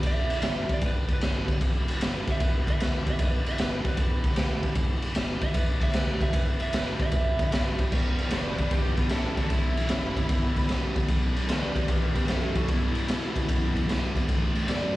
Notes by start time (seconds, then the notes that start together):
Already playing: B3 E4 G4 B4
0.03 E1 E5, kick, ride
0.30 ride
0.42 G1, snare, ride
0.69 kick, ride
0.74 D5
0.81 E1, kick, ride
0.86 B4
1.08 kick, ride
1.13 B4
1.21 G1, snare, ride
1.48 kick, ride
1.61 E1 B3 E4 G4 B4, kick, ride
1.88 ride
2.01 G1, snare, ride
2.27 muted fingered electric bass stroke, kick, ride
2.32 E5
2.40 E1 B4, kick, ride
2.67 E5, kick, ride
2.80 D2 B4, snare, ride
3.07 E1 E5, kick, ride
3.19 E1 B4, kick, ride
3.46 E5, ride
3.58 G1 B4, snare, ride
3.84 B4, muted fingered electric bass stroke, kick, ride
3.97 E1, kick, ride
4.24 kick, ride
4.32 snare
4.36 D2, snare, ride
4.63 E1, kick, ride
4.75 E1 E4 G4 B4, kick, ride
5.02 ride
5.14 G1, snare, ride
5.41 E5, muted fingered electric bass stroke, kick, ride
5.54 E1 B4, kick, ride
5.81 E5, kick, ride
5.89 snare
5.93 D2 B4, snare, ride
6.21 E1 E5, kick, ride
6.33 E1 B4, kick, ride
6.60 E5, ride
6.73 G1, snare, ride
6.77 B4
6.99 E5, muted fingered electric bass stroke, kick, ride
7.12 E1, kick, ride
7.39 kick, ride
7.52 G1, snare, ride
7.79 kick, ride
7.92 E1 E2 B2 B3 E4 G4 B4, kick, crash
8.19 E2 B2, ride
8.30 F#1 E2 C#3 B4 D5, snare, ride
8.58 E2 B2 B4 D5, kick, ride
8.71 G1 E2 B2 G4 B4, kick, ride
8.97 E2 B2 G4 B4, kick, ride
9.09 A1 E2 C#3 E4 A4, snare, ride
9.37 E2 B2 E4 F#4 A4, kick, ride
9.50 B1 E2 B2 B3 E4, kick, ride
9.77 E2 B2, ride
9.89 F#1 E2 C#3, snare, ride
10.17 E2 B2, kick, ride
10.29 G1 E2 B2, kick, ride
10.56 E2 B2, kick, snare, ride
10.69 A1 E2 C#3, snare, ride
10.96 E2 B2, kick, ride
11.08 B1 E2 B2 B3 E4 G4, kick, ride
11.37 E2 B2, ride
11.48 D2 E2 C#3 B4 D5, snare, ride
11.74 E2 B2 B4 D5, muted fingered electric bass stroke, kick, ride
11.87 E2 B2 G4 B4, kick, ride
12.14 E2 B2 G4 B4, kick, ride
12.24 snare
12.28 E2 F#2 C#3 E4 A4, snare, ride
12.55 E2 B2 E4 F#4 A4, kick, ride
12.68 E2 G2 B2 B3 E4, kick, ride
12.94 E2 B2, ride
13.08 E2 B2 C#3, snare, ride
13.34 E2 B2, kick, ride
13.48 E2 F#2 B2, kick, ride
13.74 E2 B2, kick, ride
13.86 E2 G2 C#3, ride
13.91 snare
14.15 E2 B2, kick, ride
14.27 A2 E3 C4 E4 A4 C5, kick, ride
14.55 A2 E3, ride
14.68 F#2 A2 F#3 A4 D5, snare, ride